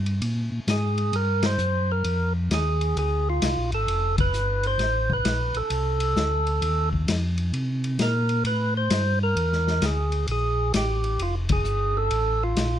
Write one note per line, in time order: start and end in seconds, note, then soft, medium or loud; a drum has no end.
0.00 0.21 G2 medium
0.06 ride soft
0.22 0.50 A#2 medium
0.22 ride medium
0.52 0.60 A#2 soft
0.67 1.12 G#2 medium
0.67 1.16 G#4 medium
0.67 snare medium
0.67 hi-hat pedal soft
0.67 ride medium
0.98 ride soft
1.13 1.58 G2 medium
1.13 1.46 A#4 medium
1.13 ride medium
1.43 1.92 C5 loud
1.43 snare medium
1.43 ride medium
1.58 2.03 F#2 medium
1.58 hi-hat pedal medium
1.92 2.33 A#4 medium
2.04 2.49 F2 medium
2.04 ride medium
2.50 2.95 D#2 medium
2.50 2.97 G#4 medium
2.50 snare medium
2.50 hi-hat pedal soft
2.50 ride medium
2.81 ride soft
2.96 3.41 D2 medium
2.96 3.29 G#4 medium
2.96 ride medium
3.30 3.71 F4 medium
3.42 3.57 C2 medium
3.42 snare medium
3.42 hi-hat pedal medium
3.42 ride medium
3.57 3.73 A#1 medium
3.72 3.87 G#1 medium
3.72 4.16 A4 medium
3.72 ride soft
3.87 4.32 F1 medium
3.87 ride medium
4.18 4.66 B4 loud
4.18 kick medium
4.18 ride medium
4.33 4.78 G1 medium
4.33 hi-hat pedal medium
4.63 5.13 C5 loud
4.63 ride soft
4.78 5.23 A1 medium
4.78 snare soft
4.78 ride medium
5.10 5.59 B4 loud
5.10 kick medium
5.24 5.53 A#1 medium
5.24 snare medium
5.24 hi-hat pedal soft
5.24 ride medium
5.54 5.63 A#1 soft
5.54 6.89 A4 loud
5.54 ride soft
5.70 6.15 C2 medium
5.70 ride medium
6.00 ride medium
6.16 6.61 D2 medium
6.16 snare medium
6.16 hi-hat pedal medium
6.47 ride soft
6.62 7.07 D#2 medium
6.62 ride medium
6.93 kick soft
7.07 7.52 F2 medium
7.07 snare medium
7.07 hi-hat pedal medium
7.07 ride medium
7.38 ride soft
7.53 7.98 C3 medium
7.53 ride medium
7.84 ride soft
7.99 8.44 A#2 medium
7.99 8.44 A#4 medium
7.99 snare medium
7.99 hi-hat pedal medium
7.99 ride medium
8.29 ride soft
8.44 8.89 A2 medium
8.44 8.74 B4 loud
8.44 ride medium
8.77 9.19 C5 loud
8.90 9.35 G2 medium
8.90 snare medium
8.90 hi-hat pedal medium
8.90 ride medium
9.23 9.86 A#4 loud
9.36 9.81 E2 medium
9.36 ride medium
9.53 snare soft
9.68 snare soft
9.82 10.27 D2 medium
9.82 10.27 G#4 medium
9.82 snare medium
9.82 hi-hat pedal medium
9.82 ride medium
10.12 ride soft
10.27 10.72 A#1 medium
10.27 10.73 G#4 medium
10.27 ride medium
10.74 11.18 A1 medium
10.74 11.22 G4 medium
10.74 snare medium
10.74 hi-hat pedal medium
10.74 ride medium
11.04 ride soft
11.19 11.64 F1 medium
11.19 11.35 F4 medium
11.19 ride medium
11.49 11.98 G#4 loud
11.49 kick medium
11.49 ride medium
11.64 12.10 G1 medium
11.64 hi-hat pedal medium
11.97 12.43 A4 loud
12.11 12.55 A1 medium
12.11 ride medium
12.43 12.79 F4 medium
12.56 12.79 A#1 medium
12.56 snare medium
12.56 hi-hat pedal medium
12.56 ride medium